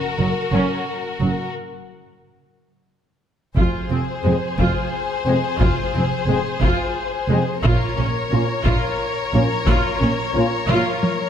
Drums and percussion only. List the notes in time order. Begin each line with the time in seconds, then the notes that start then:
3.57 taiko
4.59 taiko
5.61 taiko
6.62 taiko
7.64 taiko
8.65 taiko
9.67 taiko
10.69 taiko high
11.03 taiko high